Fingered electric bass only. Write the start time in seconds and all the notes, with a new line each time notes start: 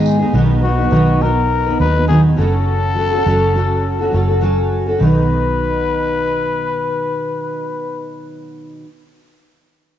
Already playing: B1
0.34 B1
0.92 B1
1.80 D#2
2.38 F#1
3.26 F#1
4.14 F#1
5.01 B1